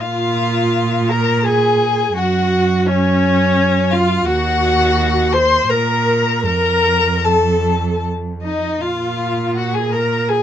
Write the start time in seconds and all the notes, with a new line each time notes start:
0.00 A#2 F4 F5
1.09 A#4 A#5
1.44 G#4 G#5
2.16 F#2 F#4 F#5
2.86 C#4 C#5
3.91 F4 F5
4.26 D#2 F#4 F#5
5.33 C5 C6
5.68 A#2 A#4 A#5
6.43 F2 A#4 A#5
7.25 A4 A5
8.42 D#4 D#5
8.81 A#2 F4 F5
9.56 F#4 F#5
9.74 G#4 G#5
9.92 A#4 A#5
10.29 G#4 G#5